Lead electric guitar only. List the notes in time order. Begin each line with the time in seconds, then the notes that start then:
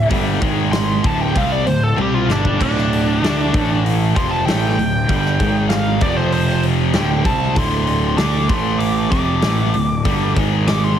0.72 C6
1.06 A5
1.21 G5
1.37 F5
1.52 D5
1.67 C5
1.83 A4
2.02 G4
2.14 F4
2.32 D4
2.62 D4
4.16 C6
4.31 A5
4.45 G5
5.69 F5
6.02 D5
6.17 C5
6.33 C5
6.95 G5
7.26 A5
7.58 C6
8.18 D6
8.50 C6
8.79 D6
9.12 D6
10.68 D6
10.84 C6